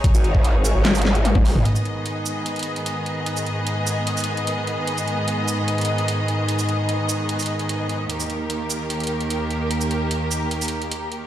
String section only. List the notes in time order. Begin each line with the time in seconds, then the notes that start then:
Already playing: D#4 G#4 C#5
1.65 G#2 D#3 B3 G#4 D#5
8.10 D#2 A#3 G4 A#4